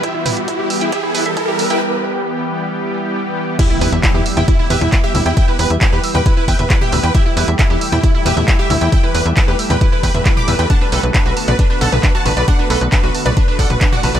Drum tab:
CC |----------------|----------------|x---------------|----------------|
HH |x-oxx-oxx-oxx-ox|----------------|x-oxx-oxx-oxx-ox|x-oxx-oxx-oxx-ox|
CP |----------------|----------------|----x-------x---|----x-------x---|
T2 |--o-------------|----------------|-------o--oo--o-|-------o---o-oo-|
BD |o---o---o---o---|----------------|o---o---o---o---|o---o---o-o-o---|

CC |----------------|----------------|----------------|----------------|
HH |x-oxx-oxx-oxx-ox|x-oxx-oxx-oxx-ox|x-oxx-oxx-oxx-ox|x-oxx-oxx-oxx-ox|
CP |----x-------x---|----x-------x---|----x-------x---|----x-------x---|
T2 |-------o--oo--o-|-------o---o-oo-|-------o--oo--o-|-------o---o-oo-|
BD |o---o---o---o---|o---o---o-o-o---|o---o---o---o---|o---o---o-o-o---|